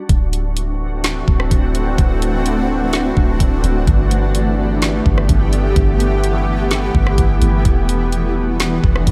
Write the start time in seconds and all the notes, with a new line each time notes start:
0.09 D1 E3 A3 C4 D4 F#4, kick, closed hi-hat
0.33 closed hi-hat
0.57 closed hi-hat
1.04 snare, closed hi-hat
1.28 D1, kick
1.40 cross-stick
1.51 D1, kick, closed hi-hat
1.75 closed hi-hat
1.98 D1, kick, closed hi-hat
2.22 closed hi-hat
2.46 closed hi-hat
2.93 snare, closed hi-hat
3.17 D1, kick
3.40 D1, kick, closed hi-hat
3.64 D1, closed hi-hat
3.87 G1 A3 B3 G4, kick, closed hi-hat
4.11 closed hi-hat
4.35 closed hi-hat
4.82 snare, closed hi-hat
5.06 G1, kick
5.18 cross-stick
5.29 G1, kick, closed hi-hat
5.53 closed hi-hat
5.76 G1 E4, kick, closed hi-hat
6.00 closed hi-hat
6.24 closed hi-hat
6.71 snare, closed hi-hat
6.95 G1, kick
7.07 cross-stick
7.18 G1, kick, closed hi-hat
7.42 G1, closed hi-hat
7.65 E1 G3 D4 F#4, kick, closed hi-hat
7.89 closed hi-hat
8.12 closed hi-hat
8.60 snare, closed hi-hat
8.84 E1, kick
8.96 cross-stick
9.07 E1, kick, closed hi-hat